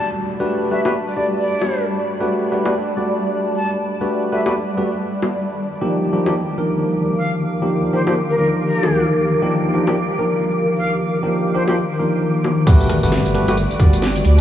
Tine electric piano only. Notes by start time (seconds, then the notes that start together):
Already playing: A3 D4 F#4 G4 D5
0.40 A3 D4 F#4 G4 B4
0.71 A3 D4 F#4 G4 B4
0.85 A3 D4 F#4 G4 B4
1.17 A3 D4 F#4 G4 D5
2.20 A3 D4 F#4 G4 B4
2.52 A3 D4 F#4 G4 B4
2.66 A3 D4 F#4 G4 B4
2.97 A3 D4 F#4 G4 D5
4.01 A3 D4 F#4 G4 B4
4.32 A3 D4 F#4 G4 B4
4.46 A3 D4 F#4 G4 B4
4.77 A3 D4 F#4 G4 B4
5.81 F3 A#3 D4 D#4 G4
6.13 F3 A#3 D4 D#4 G4
6.26 F3 A#3 D4 D#4 G4
6.58 F3 A#3 D4 D#4 A#4
7.62 F3 A#3 D4 D#4 G4
7.93 F3 A#3 D4 D#4 G4
8.07 F3 A#3 D4 D#4 G4
8.38 F3 A#3 D4 D#4 A#4
9.42 F3 A#3 D4 D#4 G4
9.74 F3 A#3 D4 D#4 G4
9.87 F3 A#3 D4 D#4 G4
10.19 F3 A#3 D4 D#4 A#4
11.23 F3 A#3 D4 D#4 G4
11.54 F3 A#3 D4 D#4 G4
11.68 F3 A#3 D4 D#4 G4
11.99 F3 A#3 D4 D#4 A#4
12.67 A3 D4 F#4 G4 B4
13.03 A3 D4 F#4 G4 B4
13.35 A3 D4 F#4 G4 B4
13.48 A3 D4 F#4 G4 B4
13.80 A3 D4 F#4 G4 D5